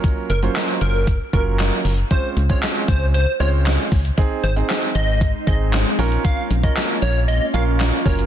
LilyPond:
<<
  \new Staff \with { instrumentName = "Digital synth lead" } { \time 4/4 \key bes \minor \tempo 4 = 116 r8 bes'16 r8. bes'8. r16 bes'16 r4 r16 | c''8 r16 des''16 r8 c''8 c''8 des''16 r4 r16 | r8 c''16 r8. ees''8. r16 ees''16 r4 r16 | f''8 r16 ees''16 r8 des''8 ees''8 f''16 r8. des''16 r16 | }
  \new Staff \with { instrumentName = "Grand piano" } { \time 4/4 \key bes \minor <ges bes des' f' bes'>8 r16 <ges bes des' f' c''>4~ <ges bes des' f' c''>16 r8 <ges bes des' f' bes'>4 r8 | <aes c' des' f' c''>8 r16 <aes c' des' f' c''>4~ <aes c' des' f' c''>16 r8 <aes c' des' f' c''>4 r8 | <c' ees' aes'>8 r16 <c' ees' aes'>4~ <c' ees' aes'>16 r8 <c' ees' aes'>4 <des' f' bes'>8~ | <des' f' bes'>8 r16 <des' f' bes'>4~ <des' f' bes'>16 r8 <des' f' bes'>4 <ges bes des' f' bes'>8 | }
  \new Staff \with { instrumentName = "Ambient pad" } { \time 4/4 \key bes \minor << { r1 | r1 | <c' ees'>2.~ <c' ees'>8 <des' f'>8~ | <des' f'>1 | } \\ { r1 | r1 | aes2.~ aes8 bes8~ | bes2.~ bes8 r8 | } >> }
  \new Staff \with { instrumentName = "FM bass" } { \clef bass \time 4/4 \key bes \minor r8 ges,,8 r8 ges,,4 ges,,4 ges,,8 | r8 des,8 r8 des,4 des,4 des,8 | r8 aes,,8 r8 aes,,4 aes,,4 bes,,8 | r8 bes,,8 r8 bes,,4 bes,,4 ges,,8 | }
  \new DrumStaff \with { instrumentName = "Drums" } \drummode { \time 4/4 <hh bd>8 hh16 hh16 <hc hh sn>8 hh8 <hh bd>8 <hh bd>8 <hc hh sn>8 hho16 hh16 | <hh bd>8 hh16 <hh bd>16 <hc hh sn>8 <hh bd>8 hh8 hh8 <hc hh sn>8 <hho bd>16 hh16 | <hh bd>8 hh16 hh16 <hc hh sn>8 hh8 <hh bd>8 <hh bd>8 <hc hh sn>8 hho16 hh16 | <hh bd>8 hh16 <hh bd>16 <hc hh sn>8 hh8 hh8 hh8 <hc hh sn>8 <hho bd>16 hh16 | }
>>